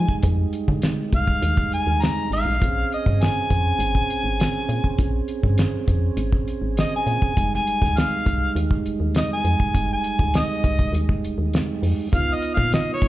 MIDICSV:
0, 0, Header, 1, 5, 480
1, 0, Start_track
1, 0, Key_signature, -4, "minor"
1, 0, Tempo, 594648
1, 187, Time_signature, 4, 2, 24, 8
1, 10558, End_track
2, 0, Start_track
2, 0, Title_t, "Harmonica"
2, 0, Program_c, 0, 22
2, 0, Note_on_c, 0, 80, 99
2, 167, Note_off_c, 0, 80, 0
2, 936, Note_on_c, 0, 77, 86
2, 1388, Note_off_c, 0, 77, 0
2, 1405, Note_on_c, 0, 80, 84
2, 1632, Note_on_c, 0, 82, 93
2, 1645, Note_off_c, 0, 80, 0
2, 1863, Note_off_c, 0, 82, 0
2, 1884, Note_on_c, 0, 77, 84
2, 2342, Note_off_c, 0, 77, 0
2, 2370, Note_on_c, 0, 75, 79
2, 2607, Note_on_c, 0, 80, 99
2, 2619, Note_off_c, 0, 75, 0
2, 4005, Note_off_c, 0, 80, 0
2, 5485, Note_on_c, 0, 75, 88
2, 5589, Note_off_c, 0, 75, 0
2, 5619, Note_on_c, 0, 80, 72
2, 6070, Note_off_c, 0, 80, 0
2, 6097, Note_on_c, 0, 80, 85
2, 6442, Note_on_c, 0, 77, 87
2, 6455, Note_off_c, 0, 80, 0
2, 6901, Note_off_c, 0, 77, 0
2, 7406, Note_on_c, 0, 75, 89
2, 7509, Note_off_c, 0, 75, 0
2, 7533, Note_on_c, 0, 80, 81
2, 7986, Note_off_c, 0, 80, 0
2, 8016, Note_on_c, 0, 80, 89
2, 8377, Note_on_c, 0, 75, 103
2, 8389, Note_off_c, 0, 80, 0
2, 8828, Note_off_c, 0, 75, 0
2, 9805, Note_on_c, 0, 77, 85
2, 9961, Note_on_c, 0, 75, 78
2, 9973, Note_off_c, 0, 77, 0
2, 10109, Note_off_c, 0, 75, 0
2, 10125, Note_on_c, 0, 77, 91
2, 10272, Note_off_c, 0, 77, 0
2, 10281, Note_on_c, 0, 75, 87
2, 10430, Note_off_c, 0, 75, 0
2, 10444, Note_on_c, 0, 73, 88
2, 10558, Note_off_c, 0, 73, 0
2, 10558, End_track
3, 0, Start_track
3, 0, Title_t, "Tonewheel organ"
3, 0, Program_c, 1, 16
3, 0, Note_on_c, 1, 55, 66
3, 0, Note_on_c, 1, 56, 63
3, 0, Note_on_c, 1, 63, 55
3, 2069, Note_off_c, 1, 56, 0
3, 2079, Note_off_c, 1, 63, 0
3, 2085, Note_off_c, 1, 55, 0
3, 2099, Note_on_c, 1, 60, 57
3, 2111, Note_on_c, 1, 61, 54
3, 2127, Note_on_c, 1, 68, 63
3, 5911, Note_off_c, 1, 60, 0
3, 5918, Note_off_c, 1, 61, 0
3, 5925, Note_off_c, 1, 68, 0
3, 5939, Note_on_c, 1, 56, 61
3, 5953, Note_on_c, 1, 63, 54
3, 5966, Note_on_c, 1, 55, 71
3, 9750, Note_off_c, 1, 56, 0
3, 9757, Note_off_c, 1, 63, 0
3, 9764, Note_off_c, 1, 55, 0
3, 9782, Note_on_c, 1, 59, 60
3, 9793, Note_on_c, 1, 63, 55
3, 9804, Note_on_c, 1, 65, 64
3, 10558, Note_off_c, 1, 59, 0
3, 10558, Note_off_c, 1, 63, 0
3, 10558, Note_off_c, 1, 65, 0
3, 10558, End_track
4, 0, Start_track
4, 0, Title_t, "FM bass"
4, 0, Program_c, 2, 39
4, 189, Note_on_c, 2, 41, 98
4, 372, Note_off_c, 2, 41, 0
4, 550, Note_on_c, 2, 50, 86
4, 733, Note_off_c, 2, 50, 0
4, 911, Note_on_c, 2, 36, 93
4, 1093, Note_off_c, 2, 36, 0
4, 1147, Note_on_c, 2, 39, 102
4, 1331, Note_off_c, 2, 39, 0
4, 1384, Note_on_c, 2, 41, 36
4, 1445, Note_off_c, 2, 41, 0
4, 1507, Note_on_c, 2, 39, 90
4, 1691, Note_off_c, 2, 39, 0
4, 1861, Note_on_c, 2, 32, 79
4, 1972, Note_off_c, 2, 32, 0
4, 1980, Note_on_c, 2, 34, 85
4, 2091, Note_off_c, 2, 34, 0
4, 2114, Note_on_c, 2, 34, 97
4, 2296, Note_off_c, 2, 34, 0
4, 2472, Note_on_c, 2, 43, 88
4, 2655, Note_off_c, 2, 43, 0
4, 2826, Note_on_c, 2, 41, 85
4, 3011, Note_off_c, 2, 41, 0
4, 3058, Note_on_c, 2, 32, 106
4, 3246, Note_off_c, 2, 32, 0
4, 3303, Note_on_c, 2, 34, 36
4, 3364, Note_off_c, 2, 34, 0
4, 3421, Note_on_c, 2, 32, 82
4, 3608, Note_off_c, 2, 32, 0
4, 3783, Note_on_c, 2, 46, 89
4, 3877, Note_off_c, 2, 46, 0
4, 4025, Note_on_c, 2, 34, 92
4, 4210, Note_off_c, 2, 34, 0
4, 4386, Note_on_c, 2, 43, 92
4, 4571, Note_off_c, 2, 43, 0
4, 4743, Note_on_c, 2, 41, 86
4, 4929, Note_off_c, 2, 41, 0
4, 4980, Note_on_c, 2, 32, 103
4, 5167, Note_off_c, 2, 32, 0
4, 5219, Note_on_c, 2, 34, 35
4, 5281, Note_off_c, 2, 34, 0
4, 5340, Note_on_c, 2, 32, 87
4, 5527, Note_off_c, 2, 32, 0
4, 5702, Note_on_c, 2, 46, 93
4, 5797, Note_off_c, 2, 46, 0
4, 5951, Note_on_c, 2, 29, 92
4, 6134, Note_off_c, 2, 29, 0
4, 6309, Note_on_c, 2, 38, 89
4, 6492, Note_off_c, 2, 38, 0
4, 6668, Note_on_c, 2, 36, 93
4, 6852, Note_off_c, 2, 36, 0
4, 6905, Note_on_c, 2, 39, 101
4, 7090, Note_off_c, 2, 39, 0
4, 7145, Note_on_c, 2, 29, 36
4, 7206, Note_off_c, 2, 29, 0
4, 7264, Note_on_c, 2, 39, 86
4, 7450, Note_off_c, 2, 39, 0
4, 7623, Note_on_c, 2, 41, 99
4, 7717, Note_off_c, 2, 41, 0
4, 7865, Note_on_c, 2, 29, 92
4, 8050, Note_off_c, 2, 29, 0
4, 8227, Note_on_c, 2, 38, 86
4, 8411, Note_off_c, 2, 38, 0
4, 8588, Note_on_c, 2, 36, 82
4, 8772, Note_off_c, 2, 36, 0
4, 8818, Note_on_c, 2, 39, 99
4, 9006, Note_off_c, 2, 39, 0
4, 9064, Note_on_c, 2, 29, 38
4, 9125, Note_off_c, 2, 29, 0
4, 9185, Note_on_c, 2, 39, 88
4, 9370, Note_off_c, 2, 39, 0
4, 9546, Note_on_c, 2, 41, 91
4, 9639, Note_off_c, 2, 41, 0
4, 9790, Note_on_c, 2, 37, 88
4, 9973, Note_off_c, 2, 37, 0
4, 10146, Note_on_c, 2, 46, 88
4, 10331, Note_off_c, 2, 46, 0
4, 10509, Note_on_c, 2, 32, 86
4, 10558, Note_off_c, 2, 32, 0
4, 10558, End_track
5, 0, Start_track
5, 0, Title_t, "Drums"
5, 68, Note_on_c, 9, 36, 68
5, 149, Note_off_c, 9, 36, 0
5, 182, Note_on_c, 9, 42, 80
5, 189, Note_on_c, 9, 36, 100
5, 263, Note_off_c, 9, 42, 0
5, 269, Note_off_c, 9, 36, 0
5, 427, Note_on_c, 9, 42, 61
5, 508, Note_off_c, 9, 42, 0
5, 549, Note_on_c, 9, 36, 79
5, 630, Note_off_c, 9, 36, 0
5, 662, Note_on_c, 9, 42, 74
5, 673, Note_on_c, 9, 38, 100
5, 743, Note_off_c, 9, 42, 0
5, 754, Note_off_c, 9, 38, 0
5, 909, Note_on_c, 9, 36, 77
5, 909, Note_on_c, 9, 42, 57
5, 989, Note_off_c, 9, 36, 0
5, 989, Note_off_c, 9, 42, 0
5, 1029, Note_on_c, 9, 36, 79
5, 1110, Note_off_c, 9, 36, 0
5, 1150, Note_on_c, 9, 42, 80
5, 1231, Note_off_c, 9, 42, 0
5, 1270, Note_on_c, 9, 36, 74
5, 1351, Note_off_c, 9, 36, 0
5, 1391, Note_on_c, 9, 42, 57
5, 1472, Note_off_c, 9, 42, 0
5, 1632, Note_on_c, 9, 42, 70
5, 1643, Note_on_c, 9, 38, 96
5, 1712, Note_off_c, 9, 42, 0
5, 1724, Note_off_c, 9, 38, 0
5, 1874, Note_on_c, 9, 46, 74
5, 1954, Note_off_c, 9, 46, 0
5, 2112, Note_on_c, 9, 36, 102
5, 2117, Note_on_c, 9, 42, 68
5, 2193, Note_off_c, 9, 36, 0
5, 2198, Note_off_c, 9, 42, 0
5, 2359, Note_on_c, 9, 42, 58
5, 2439, Note_off_c, 9, 42, 0
5, 2472, Note_on_c, 9, 36, 80
5, 2553, Note_off_c, 9, 36, 0
5, 2593, Note_on_c, 9, 42, 81
5, 2605, Note_on_c, 9, 38, 96
5, 2674, Note_off_c, 9, 42, 0
5, 2685, Note_off_c, 9, 38, 0
5, 2829, Note_on_c, 9, 36, 79
5, 2833, Note_on_c, 9, 42, 60
5, 2909, Note_off_c, 9, 36, 0
5, 2913, Note_off_c, 9, 42, 0
5, 3065, Note_on_c, 9, 42, 85
5, 3146, Note_off_c, 9, 42, 0
5, 3188, Note_on_c, 9, 36, 72
5, 3268, Note_off_c, 9, 36, 0
5, 3310, Note_on_c, 9, 42, 64
5, 3391, Note_off_c, 9, 42, 0
5, 3551, Note_on_c, 9, 42, 77
5, 3562, Note_on_c, 9, 38, 97
5, 3632, Note_off_c, 9, 42, 0
5, 3643, Note_off_c, 9, 38, 0
5, 3788, Note_on_c, 9, 42, 62
5, 3869, Note_off_c, 9, 42, 0
5, 3907, Note_on_c, 9, 36, 64
5, 3988, Note_off_c, 9, 36, 0
5, 4023, Note_on_c, 9, 42, 77
5, 4025, Note_on_c, 9, 36, 101
5, 4104, Note_off_c, 9, 42, 0
5, 4106, Note_off_c, 9, 36, 0
5, 4262, Note_on_c, 9, 42, 62
5, 4343, Note_off_c, 9, 42, 0
5, 4387, Note_on_c, 9, 36, 82
5, 4467, Note_off_c, 9, 36, 0
5, 4502, Note_on_c, 9, 42, 87
5, 4514, Note_on_c, 9, 38, 97
5, 4583, Note_off_c, 9, 42, 0
5, 4594, Note_off_c, 9, 38, 0
5, 4743, Note_on_c, 9, 42, 61
5, 4744, Note_on_c, 9, 36, 81
5, 4824, Note_off_c, 9, 42, 0
5, 4825, Note_off_c, 9, 36, 0
5, 4981, Note_on_c, 9, 42, 79
5, 5062, Note_off_c, 9, 42, 0
5, 5106, Note_on_c, 9, 36, 76
5, 5186, Note_off_c, 9, 36, 0
5, 5228, Note_on_c, 9, 42, 62
5, 5309, Note_off_c, 9, 42, 0
5, 5467, Note_on_c, 9, 42, 70
5, 5478, Note_on_c, 9, 38, 98
5, 5548, Note_off_c, 9, 42, 0
5, 5559, Note_off_c, 9, 38, 0
5, 5705, Note_on_c, 9, 42, 57
5, 5786, Note_off_c, 9, 42, 0
5, 5828, Note_on_c, 9, 36, 72
5, 5909, Note_off_c, 9, 36, 0
5, 5949, Note_on_c, 9, 36, 97
5, 5953, Note_on_c, 9, 42, 69
5, 6030, Note_off_c, 9, 36, 0
5, 6033, Note_off_c, 9, 42, 0
5, 6087, Note_on_c, 9, 38, 30
5, 6167, Note_off_c, 9, 38, 0
5, 6192, Note_on_c, 9, 42, 59
5, 6273, Note_off_c, 9, 42, 0
5, 6310, Note_on_c, 9, 36, 79
5, 6326, Note_on_c, 9, 38, 31
5, 6391, Note_off_c, 9, 36, 0
5, 6407, Note_off_c, 9, 38, 0
5, 6433, Note_on_c, 9, 42, 70
5, 6445, Note_on_c, 9, 38, 108
5, 6514, Note_off_c, 9, 42, 0
5, 6525, Note_off_c, 9, 38, 0
5, 6670, Note_on_c, 9, 36, 82
5, 6674, Note_on_c, 9, 42, 58
5, 6751, Note_off_c, 9, 36, 0
5, 6755, Note_off_c, 9, 42, 0
5, 6912, Note_on_c, 9, 42, 80
5, 6993, Note_off_c, 9, 42, 0
5, 7028, Note_on_c, 9, 36, 75
5, 7109, Note_off_c, 9, 36, 0
5, 7149, Note_on_c, 9, 42, 59
5, 7230, Note_off_c, 9, 42, 0
5, 7384, Note_on_c, 9, 42, 78
5, 7395, Note_on_c, 9, 38, 97
5, 7464, Note_off_c, 9, 42, 0
5, 7476, Note_off_c, 9, 38, 0
5, 7624, Note_on_c, 9, 42, 59
5, 7705, Note_off_c, 9, 42, 0
5, 7748, Note_on_c, 9, 36, 67
5, 7828, Note_off_c, 9, 36, 0
5, 7867, Note_on_c, 9, 36, 98
5, 7867, Note_on_c, 9, 42, 80
5, 7947, Note_off_c, 9, 36, 0
5, 7948, Note_off_c, 9, 42, 0
5, 8105, Note_on_c, 9, 42, 65
5, 8186, Note_off_c, 9, 42, 0
5, 8227, Note_on_c, 9, 36, 83
5, 8308, Note_off_c, 9, 36, 0
5, 8346, Note_on_c, 9, 42, 88
5, 8358, Note_on_c, 9, 38, 101
5, 8427, Note_off_c, 9, 42, 0
5, 8438, Note_off_c, 9, 38, 0
5, 8589, Note_on_c, 9, 36, 78
5, 8590, Note_on_c, 9, 42, 58
5, 8669, Note_off_c, 9, 36, 0
5, 8671, Note_off_c, 9, 42, 0
5, 8710, Note_on_c, 9, 36, 76
5, 8791, Note_off_c, 9, 36, 0
5, 8833, Note_on_c, 9, 42, 81
5, 8914, Note_off_c, 9, 42, 0
5, 8952, Note_on_c, 9, 36, 75
5, 9033, Note_off_c, 9, 36, 0
5, 9076, Note_on_c, 9, 42, 62
5, 9157, Note_off_c, 9, 42, 0
5, 9311, Note_on_c, 9, 42, 74
5, 9322, Note_on_c, 9, 38, 97
5, 9392, Note_off_c, 9, 42, 0
5, 9403, Note_off_c, 9, 38, 0
5, 9551, Note_on_c, 9, 46, 74
5, 9632, Note_off_c, 9, 46, 0
5, 9790, Note_on_c, 9, 36, 95
5, 9790, Note_on_c, 9, 42, 70
5, 9871, Note_off_c, 9, 36, 0
5, 9871, Note_off_c, 9, 42, 0
5, 10028, Note_on_c, 9, 42, 60
5, 10109, Note_off_c, 9, 42, 0
5, 10149, Note_on_c, 9, 36, 80
5, 10230, Note_off_c, 9, 36, 0
5, 10270, Note_on_c, 9, 42, 72
5, 10281, Note_on_c, 9, 38, 105
5, 10351, Note_off_c, 9, 42, 0
5, 10362, Note_off_c, 9, 38, 0
5, 10507, Note_on_c, 9, 42, 60
5, 10509, Note_on_c, 9, 36, 83
5, 10558, Note_off_c, 9, 36, 0
5, 10558, Note_off_c, 9, 42, 0
5, 10558, End_track
0, 0, End_of_file